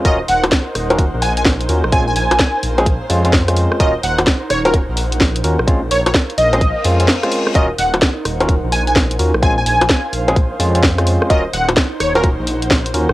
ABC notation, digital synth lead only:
X:1
M:4/4
L:1/16
Q:"Swing 16ths" 1/4=128
K:Ebdor
V:1 name="Digital synth lead"
e z g z6 z a a z4 | a a a4 z8 z2 | e z g z3 d B z8 | z2 d d z2 e4 z6 |
e z g z6 z a a z4 | a a a4 z8 z2 | e z g z3 d B z8 |]